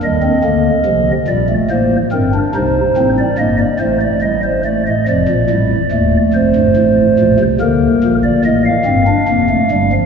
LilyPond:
<<
  \new Staff \with { instrumentName = "Pipe organ" } { \time 12/8 \key ees \major \tempo 4. = 47 ees''4. d''8 c''8 bes'8 c''8. d''16 ees''16 d''16 c''16 d''16 ees''16 c''16 d''16 ees''16 | d''4. c''4. bes'8. d''16 ees''16 f''4.~ f''16 | }
  \new Staff \with { instrumentName = "Pipe organ" } { \clef bass \time 12/8 \key ees \major << { g16 c'16 bes8 f8 g16 a16 bes8 c'16 d'16 ees'8 c'8 bes8 a8 g8 a8 | f8 g8 a2 bes4. c'16 d'16 bes16 a16 g16 f16 | } \\ { <ees, ees>8 <d, d>8 <c, c>8 <bes,, bes,>8 <a,, a,>8 <g,, g,>8 <c, c>8 <a,, a,>8 <g,, g,>8 <a,, a,>4. | <f,, f,>16 <bes,, bes,>16 <a,, a,>8 <ees,, ees,>8 <f,, f,>16 <g,, g,>16 <a,, a,>8 <bes,, bes,>16 <c, c>16 <d, d>8 <bes,, bes,>8 <a,, a,>8 <g,, g,>8 <f,, f,>8 <g,, g,>8 | } >> }
>>